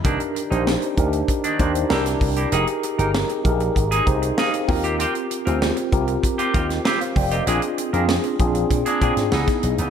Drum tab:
HH |xxxx-xxxxxxx-xox|xxxx-xxxxxxx-xox|xxxx-xxxxxxx-xox|xxxx-xxxxxxx-xxx|
SD |----o-------oo--|----o-------o---|----o------oo---|----o------ooo--|
BD |o-----o-o-o---o-|------o-o-o---o-|------o-o-o---o-|------o-o-o--o--|